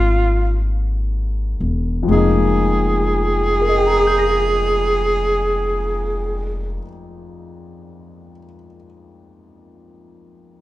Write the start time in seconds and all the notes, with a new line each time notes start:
Already playing: G#1 G#3 A#3 D#4 F4 G4
1.60 E1
2.03 F2 F3
2.08 F1 G#3 A#3 G#4
2.12 D#4 G#4
3.62 A#4
3.69 D#5
3.77 G5
3.86 A#5
3.97 D#6
4.07 G6
4.18 A#6